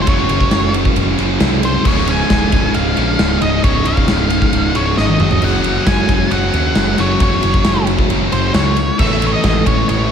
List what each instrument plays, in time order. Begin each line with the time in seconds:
0.02 lead electric guitar C5
0.06 picked electric bass F#1, distorted electric guitar F#2 C#3, lead electric guitar C#5, kick, ride
0.10 distorted electric guitar F#3
0.29 picked electric bass F#1, ride
0.41 kick
0.51 picked electric bass F#1, snare, ride
0.74 ride
0.85 kick
0.96 picked electric bass F#1, ride
1.17 picked electric bass F#1, distorted electric guitar F#2 C#3 F#3, ride
1.40 picked electric bass C2, distorted electric guitar F#2 C#3 F#3, snare, ride
1.63 lead electric guitar C5, ride
1.85 picked electric bass C#1, distorted electric guitar C#2 G#2 C#3, lead electric guitar C#5, kick, crash
2.07 lead electric guitar G#5, ride
2.30 picked electric bass C#1, kick, snare, ride
2.52 picked electric bass C#1, kick, ride
2.74 picked electric bass C#1, lead electric guitar F5, ride
2.96 picked electric bass A#1, distorted electric guitar C#2 G#2 C#3, ride
3.18 picked electric bass C#1, distorted electric guitar C#2 G#2 C#3, snare, ride
3.41 picked electric bass C#1, lead electric guitar D#5, ride
3.63 picked electric bass C#1, distorted electric guitar C#2 G#2 C#3, lead electric guitar C#5, kick, ride
3.85 picked electric bass C#1, lead electric guitar F5, ride
3.97 kick
4.08 picked electric bass C#1, snare, ride
4.30 ride
4.42 kick
4.53 picked electric bass C#1, ride
4.75 picked electric bass C#1, distorted electric guitar C#2 G#2 C#3, lead electric guitar C#5, ride
4.97 picked electric bass G#1, distorted electric guitar C#2 G#2, lead electric guitar D#5, snare
5.02 distorted electric guitar C#3
5.09 high tom
5.19 picked electric bass F#1, distorted electric guitar F#2 C#3 F#3, mid tom
5.31 floor tom
5.42 picked electric bass F#1, lead electric guitar F#5, crash
5.64 ride
5.87 picked electric bass F#1, lead electric guitar G#5, kick, snare, ride
6.08 picked electric bass F#1, kick, ride
6.30 picked electric bass F#1, distorted electric guitar F#2 C#3 F#3, lead electric guitar F#5, ride
6.53 picked electric bass D#2, distorted electric guitar F#2 C#3 F#3, ride
6.75 picked electric bass F#1, snare, ride
6.97 picked electric bass F#1, distorted electric guitar F#2 C#3 F#3, lead electric guitar C#5, snare, ride
7.20 picked electric bass F#1, lead electric guitar C#5, kick, ride
7.43 picked electric bass F#1, ride
7.54 kick
7.65 picked electric bass F#1, snare, ride
7.87 ride
7.99 kick
8.10 picked electric bass F#1, distorted electric guitar F#2 C#3 F#3, ride
8.31 picked electric bass F#1, distorted electric guitar F#2 C#3 F#3, lead electric guitar C5, ride
8.54 picked electric bass C#2, lead electric guitar C#5, snare, ride
8.76 ride
8.99 picked electric bass A1, distorted electric guitar A2 E3 A3, lead electric guitar E5, kick, crash
9.22 ride
9.27 lead electric guitar C#5
9.33 lead electric guitar D#5
9.44 picked electric bass A1, kick, snare, ride
9.66 picked electric bass A1, lead electric guitar C#5, kick, ride
9.89 picked electric bass A1, lead electric guitar C#5, ride